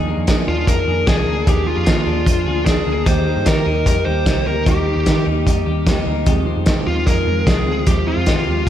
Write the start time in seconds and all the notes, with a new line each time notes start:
Already playing: D#2 D#3 G#4
0.07 A#3 D4 G#4
0.18 F2
0.27 D#3 F3 A#3 D4 G#4, kick, snare, closed hi-hat
0.47 D#2 A#3 D4 F4 G#4
0.67 F2 F3 A#3 D4 G#4 A#4, kick, closed hi-hat
0.87 F2 A#3 D4 G#4
1.07 C2 D#3 F3 A#3 D4 G#4, kick, snare, closed hi-hat
1.27 D2 A#3 D4 G#4
1.46 D#2 D#3 F3 A#3 D4 G4 G#4, kick, closed hi-hat
1.66 A#3 D4 F4 G#4
1.77 F2
1.86 D#3 F3 A#3 D4 G#4, kick, snare, closed hi-hat
2.06 D#2 A#3 D4 G#4
2.26 F2 F3 A#3 D4 G#4, kick, closed hi-hat
2.46 D2 A#3 D4 G#4
2.66 D#3 F3 A#3 D4 G#4, kick, snare, closed hi-hat
2.86 D2 A#3 D4 G#4
3.06 D#2 D#3 G3 A#3 D#4 G4 C5, kick, closed hi-hat
3.26 A#3 D#4 G4
3.36 G2
3.45 D#3 G3 A#3 D#4 G4 A#4, kick, snare, closed hi-hat
3.66 D#2 A#3 D#4 G4
3.86 F2 G3 A#3 D#4 G4 A#4, kick, closed hi-hat
4.06 D#2 D#4 G4 C5
4.10 A#3
4.26 C2 D#3 G3 A#3 D#4 G4, kick, snare, closed hi-hat
4.46 D2 A#3 D#4 G4 A#4
4.51 A#3
4.66 D#2 D#3 G3 A#3 D#4 G4, kick, closed hi-hat
4.86 A#3 D#4 G4
4.90 A#3
4.96 D#2
5.06 D#3 G3 A#3 D#4 G4, kick, snare, closed hi-hat
5.26 D#2 D#4 G4
5.31 A#3
5.46 F2 G3 A#3 D#4 G4, kick, closed hi-hat
5.66 D#2 A#3 D#4 G4
5.87 D#3 G3 A#3 D#4 G4, kick, snare, closed hi-hat
6.06 D2 A#3 D#4 G4
6.26 D#2 F2 C3 D#3 F3 G#3 C4 F4 G4, kick, closed hi-hat
6.46 F3 G#3 C4 F4
6.56 F2
6.66 F2 C3 D#3 F3 G#3 C4 F4 G4, kick, snare, closed hi-hat
6.86 D#2 F3 G#3 C4 F4
7.06 F2 F3 G#3 C4 F4 A#4, kick, closed hi-hat
7.26 F2 F3 G#3 C4 F4
7.46 C2 F2 C3 F3 G#3 C4 F4 G#4, kick, snare, closed hi-hat
7.66 D2 F3 G#3 C4 F4
7.86 D#2 F2 C3 F3 G#3 C4 F4 G4, kick, closed hi-hat
8.07 F3 G#3 C4 F4
8.17 F2
8.26 F2 C3 D#3 F3 G#3 C4 F4 G4, kick, snare, closed hi-hat
8.47 D#2 F3 G#3 C4 F4